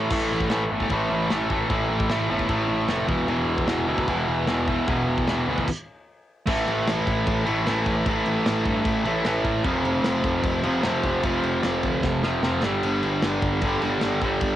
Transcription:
Already playing: distorted electric guitar E3 A3
0.10 picked electric bass A1, distorted electric guitar A2 E3 A3, kick, crash
0.31 picked electric bass A1
0.41 kick
0.50 picked electric bass A1, distorted electric guitar A2 E3 A3, snare, crash
0.70 picked electric bass G1, distorted electric guitar A2 E3 A3
0.80 kick
0.90 picked electric bass A1, distorted electric guitar A2 E3 A3, kick, crash
1.10 picked electric bass A1
1.30 picked electric bass A1, distorted electric guitar A2 E3 A3, snare, crash
1.50 distorted electric guitar A2 E3 A3, kick
1.70 picked electric bass A1, distorted electric guitar A2 E3 A3, kick, crash
1.90 picked electric bass A1
2.00 kick
2.09 picked electric bass A1, distorted electric guitar A2 E3 A3, snare, crash
2.29 picked electric bass G1, distorted electric guitar A2 E3 A3
2.39 kick
2.48 picked electric bass A1, distorted electric guitar A2 E3 A3, kick, crash
2.69 picked electric bass A1
2.88 picked electric bass F1, distorted electric guitar A2 E3 A3, snare, crash
3.07 picked electric bass E1, distorted electric guitar E2 B2 E3, kick
3.28 picked electric bass E1, distorted electric guitar E2 B2 E3, crash
3.47 picked electric bass E1
3.58 kick
3.67 picked electric bass E1, distorted electric guitar E2 B2 E3, snare, crash
3.87 picked electric bass D2, distorted electric guitar E2 B2 E3
3.98 kick
4.08 picked electric bass E1, distorted electric guitar E2 B2 E3, kick, crash
4.28 picked electric bass E1
4.47 picked electric bass E1, distorted electric guitar E2 B2 E3, snare, crash
4.68 distorted electric guitar E2 B2 E3, kick
4.88 picked electric bass E1, distorted electric guitar E2 B2 E3, kick, crash
5.07 picked electric bass E1
5.18 kick
5.27 picked electric bass E1, distorted electric guitar E2 B2 E3, snare, crash
5.47 picked electric bass D2, distorted electric guitar E2 B2 E3
5.58 kick
5.68 kick, crash
6.47 picked electric bass A1, distorted electric guitar A2 E3 A3, kick, crash
6.68 picked electric bass A1, crash
6.87 picked electric bass A1, snare, crash
7.07 picked electric bass A1, kick, crash
7.27 picked electric bass A1, kick, crash
7.45 picked electric bass A1, distorted electric guitar A2 E3 A3, crash
7.66 picked electric bass A1, distorted electric guitar A2 E3 A3, snare, crash
7.86 picked electric bass A1, kick, crash
8.06 picked electric bass A1, distorted electric guitar A2 E3 A3, kick, crash
8.26 picked electric bass A1, crash
8.46 picked electric bass A1, snare, crash
8.65 picked electric bass G2, kick, crash
8.85 picked electric bass A1, kick, crash
9.05 picked electric bass A1, distorted electric guitar A2 E3 A3, crash
9.24 picked electric bass A1, distorted electric guitar A2 E3 A3, snare, crash
9.45 picked electric bass A2, kick, crash
9.63 picked electric bass F1, distorted electric guitar F2 C3 F3, kick, crash
9.84 picked electric bass F1, crash
10.03 picked electric bass F1, snare, crash
10.24 picked electric bass F1, kick, crash
10.43 picked electric bass F1, kick, crash
10.63 picked electric bass F1, distorted electric guitar F2 C3 F3, crash
10.83 picked electric bass F1, distorted electric guitar F2 C3 F3, snare, crash
11.03 picked electric bass F1, kick, crash
11.23 picked electric bass F1, distorted electric guitar F2 C3 F3, kick, crash
11.43 picked electric bass F1, crash
11.63 picked electric bass F1, snare, crash
11.83 picked electric bass D2, kick, crash
12.03 picked electric bass F1, kick, snare
12.23 picked electric bass F1, distorted electric guitar F2 C3 F3, snare
12.42 picked electric bass F1, distorted electric guitar F2 C3 F3, snare
12.62 picked electric bass G1, distorted electric guitar G2 D3 G3, snare
12.83 picked electric bass G1, crash
13.03 picked electric bass G1, crash
13.22 picked electric bass G1, snare, crash
13.42 picked electric bass G1, kick, crash
13.61 picked electric bass G1, distorted electric guitar G2 D3 G3, kick, crash
13.81 picked electric bass G1, distorted electric guitar G2 D3 G3, crash
14.01 picked electric bass G1, snare, crash
14.21 picked electric bass G1, distorted electric guitar G2 D3 G3, kick, crash
14.41 picked electric bass G1, kick, crash

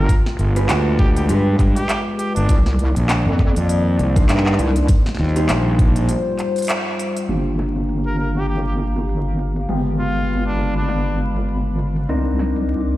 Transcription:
Already playing: analog synth pad F4, trumpet A#4
0.09 analog synth pad G#3 B4, kick, closed hi-hat
0.26 snare
0.39 fingered electric bass G1, closed hi-hat
0.56 clean electric guitar F4 G4 G#4 B4, closed hi-hat
0.69 fingered electric bass D2, clap, snare, closed hi-hat
0.99 trumpet G4, kick
1.16 trumpet G4, closed hi-hat
1.29 fingered electric bass G2, clean electric guitar F4 G4 G#4 B4, closed hi-hat
1.59 fingered electric bass G2, kick, clap, closed hi-hat
1.76 trumpet G4, closed hi-hat
1.89 clap, closed hi-hat
2.18 trumpet G4, closed hi-hat
2.36 fingered electric bass G1, trumpet D4, closed hi-hat
2.48 wobble bass C2, analog synth pad D#3 A#3 D5, kick, closed hi-hat
2.66 snare
2.79 closed hi-hat
2.96 fingered electric bass A#1, closed hi-hat
3.09 clap, snare, closed hi-hat
3.26 wobble bass F2
3.39 kick, clap
3.56 fingered electric bass F2, closed hi-hat
3.69 closed hi-hat
3.99 fingered electric bass C2, closed hi-hat
4.16 wobble bass A#1, clean electric guitar D4 D#4 A#4 C5, kick, closed hi-hat
4.29 fingered electric bass G2, clap, snare, closed hi-hat
4.37 clap
4.46 clap
4.53 clap
4.59 wobble bass C2, closed hi-hat
4.76 closed hi-hat
4.88 analog synth pad G3 F4 C5, kick, closed hi-hat
5.06 snare
5.09 snare
5.15 snare
5.19 fingered electric bass D#2, snare
5.24 snare
5.29 snare
5.36 clean electric guitar D#4 F4 G4 C5, closed hi-hat
5.49 fingered electric bass A#1, clap, snare, closed hi-hat
5.79 kick, closed hi-hat
5.96 closed hi-hat
6.09 closed hi-hat
6.39 clap, closed hi-hat
6.56 closed hi-hat
6.58 closed hi-hat
6.62 closed hi-hat
6.65 closed hi-hat
6.67 clap, closed hi-hat
6.69 closed hi-hat
6.99 closed hi-hat
7.17 closed hi-hat
7.28 wobble bass G1, clean electric guitar A#3 D4 F4 G4, analog synth pad G4 F5 A#5, closed hi-hat, crash
7.59 snare, closed hi-hat
7.76 closed hi-hat
7.89 closed hi-hat
8.06 trumpet A#4
8.19 trumpet A#4
8.36 trumpet G4, closed hi-hat
8.49 trumpet G4, closed hi-hat
8.66 trumpet G4
8.79 closed hi-hat
8.96 closed hi-hat
9.09 closed hi-hat
9.39 closed hi-hat
9.56 closed hi-hat
9.69 wobble bass G1, analog synth pad G#3 B5, clean electric guitar G#3 B3 F4 G4, closed hi-hat
9.99 trumpet F4, closed hi-hat
10.16 closed hi-hat
10.29 closed hi-hat
10.46 trumpet D4
10.76 trumpet D4, closed hi-hat
10.89 snare, closed hi-hat
11.19 closed hi-hat
11.36 closed hi-hat
11.49 closed hi-hat
11.79 closed hi-hat
11.96 closed hi-hat
12.08 wobble bass C2, clean electric guitar C4 D4 D#4 A#4, analog synth pad A#4 D6, closed hi-hat
12.39 snare, closed hi-hat
12.56 closed hi-hat
12.69 closed hi-hat

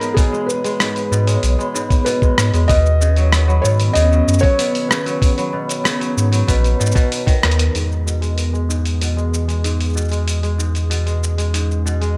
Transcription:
Already playing: kora G#2 G#3, ambient pad E3 B3 G#4, felt piano A#4, vibraphone B4 C#5 B5
0.00 vibraphone B3, open hi-hat, cabasa
0.14 kora B2, felt piano G#4, kick, open hi-hat, cabasa
0.33 kora G#3, cabasa
0.46 felt piano B4, cabasa
0.64 kora G#3, open hi-hat, cabasa
0.80 kora G#2, vibraphone B4, cross-stick, open hi-hat, cabasa
0.96 open hi-hat, cabasa
1.11 sub bass G#2, kora B2, cabasa
1.27 kora G#3, vibraphone C#5, open hi-hat, cabasa
1.43 sub bass B1, open hi-hat, cabasa
1.59 kora G#3, vibraphone B5, cabasa
1.74 kora G#2, cabasa
1.90 vibraphone B3, kick, open hi-hat, cabasa
2.05 kora B2, felt piano B4, open hi-hat, cabasa
2.22 kora G#3, kick, cabasa
2.38 sub bass G#2, cross-stick, open hi-hat, cabasa
2.53 sub bass E2, kora G#3, open hi-hat, cabasa
2.68 sub bass D#2, kora B2, ambient pad D#3 B3 C#4, vibraphone B4, felt piano D#5, kick, open hi-hat, cabasa
2.86 cabasa
3.01 kora C#3, cabasa
3.16 kora F#3, vibraphone C#5, open hi-hat, cabasa
3.32 cross-stick, open hi-hat, cabasa
3.48 kora F#3, vibraphone B5, cabasa
3.62 sub bass G#2, kora B2, felt piano C#5, cabasa
3.80 vibraphone B3, open hi-hat, cabasa
3.93 sub bass D#2, kora C#3, felt piano D#5, open hi-hat, cabasa
4.11 kora F#3, cabasa
4.27 sub bass F#2, cabasa
4.33 cabasa
4.39 kora F#3, felt piano C#5, cabasa
4.43 kick, open hi-hat
4.59 kora B2, vibraphone B4, open hi-hat, cabasa
4.75 open hi-hat, cabasa
4.88 kora C#3, felt piano B4, cross-stick, cabasa
5.06 kora F#3, vibraphone C#5, open hi-hat, cabasa
5.21 ambient pad D#4, kick, open hi-hat, cabasa
5.38 kora F#3, vibraphone B5, open hi-hat, cabasa
5.53 kora B2
5.69 vibraphone B3, open hi-hat, cabasa
5.84 kora C#3, cross-stick, open hi-hat, cabasa
6.00 kora F#3, open hi-hat, cabasa
6.17 sub bass G#2, cabasa
6.32 kora F#3, open hi-hat, cabasa
6.47 sub bass A#1, kora B2, vibraphone B4, kick, open hi-hat, cabasa
6.64 open hi-hat, cabasa
6.80 sub bass G#2, kora B2, cabasa
6.86 cabasa
6.92 kora B2, cabasa
6.96 vibraphone B4, kick, open hi-hat, cabasa
7.12 open hi-hat, cabasa
7.26 kora D#3, vibraphone A#4, kick, open hi-hat, cabasa
7.43 sub bass D#2, kora D#4, cross-stick, closed hi-hat
7.51 closed hi-hat
7.59 vibraphone A#4, closed hi-hat
7.75 sub bass E2, kora G#2, ambient pad E3 B3 G#4, open hi-hat, cabasa
7.92 cabasa
8.06 kora B2, cabasa
8.21 kora G#3, open hi-hat, cabasa
8.38 open hi-hat, cabasa
8.53 kora G#3, cabasa
8.69 kora G#2, cabasa
8.85 open hi-hat, cabasa
9.01 kora B2, open hi-hat, cabasa
9.17 kora G#3, cabasa
9.34 cabasa
9.48 kora G#3, open hi-hat, cabasa
9.64 kora G#2, open hi-hat, cabasa
9.81 open hi-hat, cabasa
9.86 cabasa
9.90 cabasa
9.93 kora B2, cabasa
9.97 cabasa
10.01 cabasa
10.05 cabasa
10.09 kora G#3, open hi-hat, cabasa
10.13 cabasa
10.28 ambient pad C#4, open hi-hat, cabasa
10.43 kora G#3, open hi-hat, cabasa
10.58 kora G#2, cabasa
10.75 open hi-hat, cabasa
10.90 kora B2, open hi-hat, cabasa
11.06 kora G#3, open hi-hat, cabasa
11.23 cabasa
11.38 kora G#3, open hi-hat, cabasa
11.54 kora G#2, open hi-hat, cabasa
11.71 cabasa
11.86 kora B2, cabasa
12.01 kora G#3, open hi-hat, cabasa

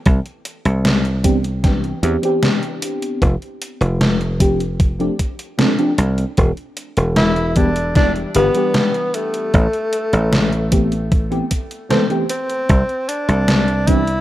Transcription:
0.06 slap bass C2, kick, closed hi-hat
0.26 closed hi-hat
0.45 closed hi-hat
0.65 slap bass C2, closed hi-hat
0.85 snare, closed hi-hat
1.05 closed hi-hat
1.23 fm electric piano E3 B3 C4 D4 G4, kick, closed hi-hat
1.44 closed hi-hat
1.63 fm electric piano E3 B3 C4 D4 G4, kick, snare, closed hi-hat
1.84 closed hi-hat
2.03 slap bass E2, fm electric piano E3 B3 C4 D4 G4, closed hi-hat
2.22 fm electric piano E3 B3 C4 D4 G4, closed hi-hat
2.43 snare, closed hi-hat
2.63 closed hi-hat
2.82 closed hi-hat
3.02 closed hi-hat
3.22 slap bass F1, kick, closed hi-hat
3.42 closed hi-hat
3.62 closed hi-hat
3.81 slap bass F1, closed hi-hat
4.01 snare, closed hi-hat
4.21 closed hi-hat
4.39 fm electric piano F3 A3 C4 D4 G4, kick, closed hi-hat
4.60 closed hi-hat
4.80 kick, closed hi-hat
4.99 fm electric piano F3 A3 C4 D4 G4, closed hi-hat
5.19 kick, closed hi-hat
5.39 closed hi-hat
5.58 fm electric piano F3 A3 C4 D4 A4, snare, closed hi-hat
5.78 fm electric piano F3 A3 C4 D4 G4, closed hi-hat
5.98 slap bass C2, closed hi-hat
6.18 closed hi-hat
6.37 slap bass E1, kick, closed hi-hat
6.57 closed hi-hat
6.77 closed hi-hat
6.97 slap bass E1, closed hi-hat
7.16 tenor saxophone E4, snare, closed hi-hat
7.36 closed hi-hat
7.56 fm electric piano E3 G3 B3 D4 G4, tenor saxophone D4, kick, closed hi-hat
7.76 closed hi-hat
7.95 fm electric piano E3 G3 B3 D4 G4, tenor saxophone D4, kick, snare, closed hi-hat
8.16 closed hi-hat
8.34 slap bass G1, fm electric piano E3 G3 B3 D4 G4, tenor saxophone B3, closed hi-hat
8.54 fm electric piano E3 G3 B3 D4 G4, closed hi-hat
8.74 snare, closed hi-hat
8.94 closed hi-hat
9.14 tenor saxophone A3, closed hi-hat
9.34 closed hi-hat
9.54 slap bass A1, kick, closed hi-hat
9.73 closed hi-hat
9.93 closed hi-hat
10.13 slap bass A1, closed hi-hat
10.33 snare, closed hi-hat
10.53 closed hi-hat
10.71 fm electric piano E3 A3 B3 C4 G4, kick, closed hi-hat
10.92 closed hi-hat
11.12 kick, closed hi-hat
11.30 fm electric piano E3 A3 B3 C4 G4, closed hi-hat
11.51 kick, closed hi-hat
11.71 closed hi-hat
11.89 fm electric piano E3 A3 B3 C4 A4, tenor saxophone C4, snare, closed hi-hat
12.10 fm electric piano E3 A3 B3 C4 G4, closed hi-hat
12.29 tenor saxophone C4, closed hi-hat
12.50 closed hi-hat
12.69 slap bass C2, kick, closed hi-hat
12.89 closed hi-hat
13.09 tenor saxophone D4, closed hi-hat
13.28 slap bass C2, closed hi-hat
13.48 snare, closed hi-hat
13.68 closed hi-hat
13.87 fm electric piano E3 B3 C4 D4 G4, tenor saxophone E4, kick, closed hi-hat
14.07 closed hi-hat

